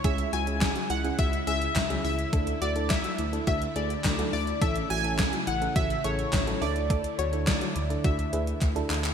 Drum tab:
HH |xxxxxxxxxxxxxxox|xxxxxxxxxxxxxxox|xxxxxxxxxxxxxxox|xxxxxxxxxxxxxxox|
CP |----x-------x---|----x-------x---|----x-------x---|----x-------x-xx|
SD |----o-------o---|----o-------o---|----o-------o---|----o-----------|
BD |o---o---o---o---|o---o---o---o---|o---o---o---o---|o---o---o---o---|